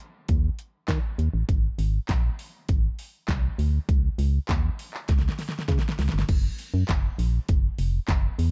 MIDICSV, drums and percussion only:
0, 0, Header, 1, 2, 480
1, 0, Start_track
1, 0, Tempo, 600000
1, 1190, Time_signature, 4, 2, 24, 8
1, 6810, End_track
2, 0, Start_track
2, 0, Title_t, "Drums"
2, 228, Note_on_c, 9, 42, 78
2, 231, Note_on_c, 9, 36, 116
2, 308, Note_off_c, 9, 42, 0
2, 311, Note_off_c, 9, 36, 0
2, 469, Note_on_c, 9, 42, 54
2, 549, Note_off_c, 9, 42, 0
2, 708, Note_on_c, 9, 36, 109
2, 709, Note_on_c, 9, 39, 105
2, 710, Note_on_c, 9, 42, 71
2, 712, Note_on_c, 9, 38, 83
2, 788, Note_off_c, 9, 36, 0
2, 789, Note_off_c, 9, 39, 0
2, 790, Note_off_c, 9, 42, 0
2, 792, Note_off_c, 9, 38, 0
2, 951, Note_on_c, 9, 42, 49
2, 1031, Note_off_c, 9, 42, 0
2, 1190, Note_on_c, 9, 36, 119
2, 1191, Note_on_c, 9, 42, 70
2, 1270, Note_off_c, 9, 36, 0
2, 1271, Note_off_c, 9, 42, 0
2, 1429, Note_on_c, 9, 46, 76
2, 1509, Note_off_c, 9, 46, 0
2, 1671, Note_on_c, 9, 39, 103
2, 1671, Note_on_c, 9, 42, 75
2, 1672, Note_on_c, 9, 36, 100
2, 1675, Note_on_c, 9, 38, 81
2, 1751, Note_off_c, 9, 39, 0
2, 1751, Note_off_c, 9, 42, 0
2, 1752, Note_off_c, 9, 36, 0
2, 1755, Note_off_c, 9, 38, 0
2, 1912, Note_on_c, 9, 46, 81
2, 1992, Note_off_c, 9, 46, 0
2, 2149, Note_on_c, 9, 42, 82
2, 2152, Note_on_c, 9, 36, 118
2, 2229, Note_off_c, 9, 42, 0
2, 2232, Note_off_c, 9, 36, 0
2, 2390, Note_on_c, 9, 46, 77
2, 2470, Note_off_c, 9, 46, 0
2, 2628, Note_on_c, 9, 36, 107
2, 2629, Note_on_c, 9, 39, 112
2, 2631, Note_on_c, 9, 42, 69
2, 2632, Note_on_c, 9, 38, 89
2, 2708, Note_off_c, 9, 36, 0
2, 2709, Note_off_c, 9, 39, 0
2, 2711, Note_off_c, 9, 42, 0
2, 2712, Note_off_c, 9, 38, 0
2, 2872, Note_on_c, 9, 46, 67
2, 2952, Note_off_c, 9, 46, 0
2, 3110, Note_on_c, 9, 36, 123
2, 3111, Note_on_c, 9, 42, 71
2, 3190, Note_off_c, 9, 36, 0
2, 3191, Note_off_c, 9, 42, 0
2, 3349, Note_on_c, 9, 46, 78
2, 3429, Note_off_c, 9, 46, 0
2, 3591, Note_on_c, 9, 39, 105
2, 3591, Note_on_c, 9, 42, 70
2, 3592, Note_on_c, 9, 36, 100
2, 3594, Note_on_c, 9, 38, 85
2, 3671, Note_off_c, 9, 39, 0
2, 3671, Note_off_c, 9, 42, 0
2, 3672, Note_off_c, 9, 36, 0
2, 3674, Note_off_c, 9, 38, 0
2, 3833, Note_on_c, 9, 46, 82
2, 3913, Note_off_c, 9, 46, 0
2, 3950, Note_on_c, 9, 39, 71
2, 4030, Note_off_c, 9, 39, 0
2, 4068, Note_on_c, 9, 42, 85
2, 4070, Note_on_c, 9, 38, 62
2, 4072, Note_on_c, 9, 36, 113
2, 4148, Note_off_c, 9, 42, 0
2, 4149, Note_off_c, 9, 38, 0
2, 4149, Note_on_c, 9, 38, 55
2, 4152, Note_off_c, 9, 36, 0
2, 4229, Note_off_c, 9, 38, 0
2, 4230, Note_on_c, 9, 38, 68
2, 4309, Note_on_c, 9, 46, 78
2, 4310, Note_off_c, 9, 38, 0
2, 4310, Note_on_c, 9, 38, 59
2, 4389, Note_off_c, 9, 38, 0
2, 4389, Note_off_c, 9, 46, 0
2, 4389, Note_on_c, 9, 38, 75
2, 4469, Note_off_c, 9, 38, 0
2, 4470, Note_on_c, 9, 38, 69
2, 4548, Note_on_c, 9, 36, 108
2, 4549, Note_on_c, 9, 42, 72
2, 4550, Note_off_c, 9, 38, 0
2, 4550, Note_on_c, 9, 38, 85
2, 4628, Note_off_c, 9, 36, 0
2, 4629, Note_off_c, 9, 42, 0
2, 4630, Note_off_c, 9, 38, 0
2, 4630, Note_on_c, 9, 38, 78
2, 4709, Note_off_c, 9, 38, 0
2, 4709, Note_on_c, 9, 38, 93
2, 4789, Note_off_c, 9, 38, 0
2, 4790, Note_on_c, 9, 38, 82
2, 4790, Note_on_c, 9, 46, 71
2, 4869, Note_off_c, 9, 38, 0
2, 4869, Note_on_c, 9, 38, 97
2, 4870, Note_off_c, 9, 46, 0
2, 4949, Note_off_c, 9, 38, 0
2, 4950, Note_on_c, 9, 38, 93
2, 5029, Note_on_c, 9, 42, 72
2, 5029, Note_on_c, 9, 49, 98
2, 5030, Note_off_c, 9, 38, 0
2, 5030, Note_on_c, 9, 36, 122
2, 5109, Note_off_c, 9, 42, 0
2, 5109, Note_off_c, 9, 49, 0
2, 5110, Note_off_c, 9, 36, 0
2, 5268, Note_on_c, 9, 46, 78
2, 5348, Note_off_c, 9, 46, 0
2, 5510, Note_on_c, 9, 39, 106
2, 5510, Note_on_c, 9, 42, 75
2, 5512, Note_on_c, 9, 36, 102
2, 5514, Note_on_c, 9, 38, 86
2, 5590, Note_off_c, 9, 39, 0
2, 5590, Note_off_c, 9, 42, 0
2, 5592, Note_off_c, 9, 36, 0
2, 5594, Note_off_c, 9, 38, 0
2, 5752, Note_on_c, 9, 46, 80
2, 5832, Note_off_c, 9, 46, 0
2, 5988, Note_on_c, 9, 42, 82
2, 5992, Note_on_c, 9, 36, 120
2, 6068, Note_off_c, 9, 42, 0
2, 6072, Note_off_c, 9, 36, 0
2, 6228, Note_on_c, 9, 46, 78
2, 6308, Note_off_c, 9, 46, 0
2, 6467, Note_on_c, 9, 39, 110
2, 6468, Note_on_c, 9, 36, 109
2, 6468, Note_on_c, 9, 42, 74
2, 6470, Note_on_c, 9, 38, 91
2, 6547, Note_off_c, 9, 39, 0
2, 6548, Note_off_c, 9, 36, 0
2, 6548, Note_off_c, 9, 42, 0
2, 6550, Note_off_c, 9, 38, 0
2, 6711, Note_on_c, 9, 46, 70
2, 6791, Note_off_c, 9, 46, 0
2, 6810, End_track
0, 0, End_of_file